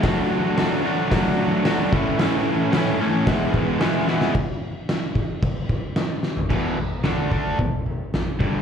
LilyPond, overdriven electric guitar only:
\new Staff \with { instrumentName = "Overdriven electric guitar" } { \time 4/4 \key e \mixolydian \tempo 4 = 111 <fis a d' fis'>4 <fis a d' fis'>8 <fis a d' fis'>8 <fis a d' fis'>4 <fis a d' fis'>8 <a, e a cis' e'>8 | <a, e a cis' e'>4 <a, e a cis' e'>8 <a, e a cis' e'>8 <e gis b e'>4 <e gis b e'>8 <e gis b e'>8 | r1 | <e, b, e>8 r8 <d a d'>8 <d a d'>8 <e, b,>8 r4 <g, d g>8 | }